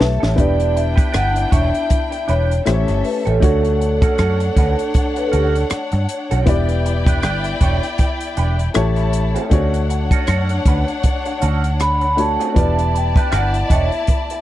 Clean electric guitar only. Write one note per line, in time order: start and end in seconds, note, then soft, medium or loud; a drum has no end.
0.20 0.35 C#4 medium
0.20 0.36 G4 medium
0.20 0.37 A4 medium
0.36 0.60 D4 medium
0.36 0.58 G4 medium
0.36 0.57 B4 medium
0.58 muted clean electric guitar stroke soft
0.75 muted clean electric guitar stroke soft
0.96 1.11 D4 soft
0.96 1.11 G4 soft
0.96 1.10 B4 soft
1.12 1.36 D4 medium
1.12 1.35 G4 medium
1.12 1.33 B4 medium
1.35 muted clean electric guitar stroke soft
1.50 1.70 D4 soft
1.50 1.70 G4 soft
1.50 1.70 C#5 soft
1.72 muted clean electric guitar stroke soft
1.89 muted clean electric guitar stroke soft
2.11 muted clean electric guitar stroke soft
2.28 2.51 D4 medium
2.28 2.50 G4 medium
2.28 2.49 B4 medium
2.50 muted clean electric guitar stroke soft
2.65 muted clean electric guitar stroke soft
2.88 muted clean electric guitar stroke soft
3.25 3.39 C#4 medium
3.25 3.41 G4 medium
3.25 3.41 A4 medium
3.40 3.65 C#4 medium
3.40 3.63 F#4 medium
3.40 3.62 A4 medium
3.64 muted clean electric guitar stroke soft
3.79 muted clean electric guitar stroke soft
4.02 4.16 C#4 soft
4.02 4.16 F#4 soft
4.02 4.16 A4 soft
4.18 4.42 C#4 medium
4.18 4.41 F#4 medium
4.18 4.39 A4 medium
4.41 muted clean electric guitar stroke soft
4.56 4.75 C#4 soft
4.56 4.76 F#4 medium
4.56 4.76 B4 medium
4.79 muted clean electric guitar stroke soft
4.94 muted clean electric guitar stroke soft
5.17 muted clean electric guitar stroke soft
5.32 5.55 C#4 medium
5.32 5.54 F#4 medium
5.32 5.53 A4 medium
5.54 muted clean electric guitar stroke soft
5.70 muted clean electric guitar stroke soft
5.93 muted clean electric guitar stroke soft
6.31 6.46 C#4 medium
6.31 6.47 F#4 medium
6.31 6.48 A4 medium
6.46 6.70 D4 medium
6.46 6.69 G4 medium
6.46 6.68 B4 medium
6.69 muted clean electric guitar stroke soft
6.85 muted clean electric guitar stroke soft
7.07 7.21 D4 soft
7.07 7.21 G4 soft
7.07 7.20 B4 soft
7.22 7.46 D4 medium
7.22 7.45 G4 medium
7.22 7.44 B4 medium
7.45 muted clean electric guitar stroke soft
7.61 7.80 D4 medium
7.61 7.80 G4 medium
7.61 7.80 C#5 medium
7.83 muted clean electric guitar stroke soft
8.00 muted clean electric guitar stroke soft
8.37 8.56 D4 soft
8.37 8.56 G4 soft
8.37 8.57 B4 soft
8.59 muted clean electric guitar stroke soft
8.75 muted clean electric guitar stroke soft
8.97 muted clean electric guitar stroke soft
9.35 9.50 C#4 soft
9.35 9.52 G4 medium
9.35 9.52 A4 medium
9.51 9.75 C#4 medium
9.51 9.73 F#4 medium
9.51 9.72 A4 medium
9.73 muted clean electric guitar stroke soft
9.89 muted clean electric guitar stroke soft
10.12 10.26 C#4 soft
10.12 10.26 F#4 soft
10.12 10.25 A4 medium
10.28 10.51 C#4 medium
10.28 10.50 F#4 medium
10.28 10.49 A4 medium
10.50 muted clean electric guitar stroke soft
10.66 10.84 C#4 soft
10.66 10.85 F#4 soft
10.66 10.85 B4 medium
10.88 muted clean electric guitar stroke soft
11.04 muted clean electric guitar stroke soft
11.26 muted clean electric guitar stroke soft
11.42 11.65 C#4 medium
11.42 11.64 F#4 medium
11.42 11.63 A4 medium
11.64 muted clean electric guitar stroke soft
11.80 muted clean electric guitar stroke soft
12.02 muted clean electric guitar stroke soft
12.40 12.56 C#4 medium
12.40 12.57 F#4 medium
12.40 12.57 A4 medium
12.56 12.79 D4 medium
12.56 12.78 G4 medium
12.56 12.77 B4 medium
12.78 muted clean electric guitar stroke soft
12.93 muted clean electric guitar stroke soft
13.16 13.30 D4 soft
13.16 13.30 G4 soft
13.16 13.29 B4 soft
13.31 13.55 D4 medium
13.31 13.55 G4 medium
13.31 13.53 B4 medium
13.55 muted clean electric guitar stroke soft
13.70 13.89 D4 soft
13.70 13.89 G4 medium
13.70 13.89 C#5 medium
13.93 muted clean electric guitar stroke soft
14.08 muted clean electric guitar stroke soft
14.31 muted clean electric guitar stroke soft